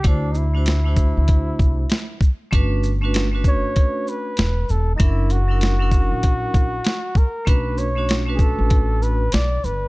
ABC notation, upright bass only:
X:1
M:4/4
L:1/16
Q:"Swing 16ths" 1/4=97
K:D
V:1 name="Upright bass" clef=bass
D,,6- D,, D,,3 =C,,2 z4 | G,,,6- G,,, z4 z E,,,2 E,,,2 | F,,,6- F,,, ^A,,,3 A,,,2 z4 | B,,,6- B,,, A,,,4- A,,, B,,,2 G,,,2 |]